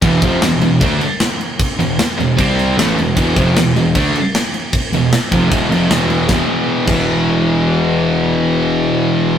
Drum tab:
CC |xxxxxxxx|xxxxxxxx|xxxxxxxx|xxxxxxxx|
SD |--o---o-|--o---o-|--o---o-|--o---o-|
BD |oo--o---|o---o---|oo--o---|o--oo---|

CC |---x----|--------|
SD |o-------|--------|
BD |o--o----|--------|